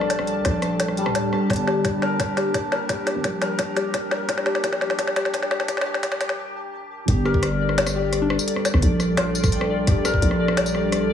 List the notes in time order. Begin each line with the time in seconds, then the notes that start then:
Already playing: A#1 G3 D4 G4 A4 A#4 D5 G5 A5
0.01 cross-stick
0.10 snare, closed hi-hat
0.19 cross-stick
0.27 closed hi-hat
0.36 G1
0.45 A#1, cross-stick, snare, closed hi-hat
0.62 cross-stick, closed hi-hat
0.80 snare, closed hi-hat
0.88 cross-stick
0.97 G3, closed hi-hat
1.06 D1, cross-stick
1.15 snare, closed hi-hat
1.33 G4, cross-stick
1.50 G1 G4 A#4, kick, snare, closed hi-hat
1.53 closed hi-hat
1.56 closed hi-hat
1.67 G4, snare
1.85 kick, snare, closed hi-hat
2.02 A#4, snare
2.20 G4, kick, snare, closed hi-hat
2.37 G4, snare, closed hi-hat
2.54 kick, snare, closed hi-hat
2.72 A#4, snare
2.89 G4, kick, snare, closed hi-hat
3.07 G4, snare, closed hi-hat
3.15 G1
3.24 A#1, kick, snare, closed hi-hat
3.42 A#4, snare, closed hi-hat
3.59 G4, kick, snare, closed hi-hat
3.76 G4, snare, closed hi-hat
3.94 kick, snare, closed hi-hat
4.11 A#4, snare
4.29 G4, kick, snare, closed hi-hat
4.38 snare
4.46 G4, snare
4.55 G1, snare
4.64 A#1 G4, kick, snare, closed hi-hat
4.72 snare
4.81 G4, snare
4.90 snare
4.99 G4, kick, snare, closed hi-hat
5.07 snare
5.16 G4, snare, closed hi-hat
5.25 snare
5.34 G4, kick, snare, closed hi-hat
5.42 snare
5.51 G4, snare
5.60 snare
5.68 G4, kick, snare, closed hi-hat
5.77 snare
5.81 snare
5.86 G4
5.94 G1, snare
6.03 A#1 G4, kick, snare, closed hi-hat
6.12 snare
6.21 G4, snare, closed hi-hat
6.29 snare
7.08 G1 G3 D4 G4 A4 D5, kick, closed hi-hat
7.25 G4 A#4, cross-stick
7.34 kick
7.43 cross-stick, closed hi-hat
7.69 cross-stick
7.78 snare, closed hi-hat
7.86 cross-stick, tambourine
7.96 G4
8.13 cross-stick, closed hi-hat
8.22 D4
8.30 D4, cross-stick
8.39 tambourine
8.48 closed hi-hat
8.56 cross-stick
8.65 snare, closed hi-hat, tambourine
8.74 G1, cross-stick
8.82 A#1, closed hi-hat
9.00 cross-stick, tambourine
9.17 F4, cross-stick, snare, closed hi-hat
9.35 tambourine
9.44 kick, cross-stick, tambourine
9.52 G5, closed hi-hat
9.61 cross-stick
9.87 G4, kick, cross-stick, closed hi-hat
10.05 A#4, cross-stick, tambourine
10.14 G1, kick
10.22 A#1, closed hi-hat
10.31 cross-stick
10.48 cross-stick
10.57 snare, closed hi-hat
10.66 tambourine
10.75 G4, cross-stick
10.92 cross-stick, closed hi-hat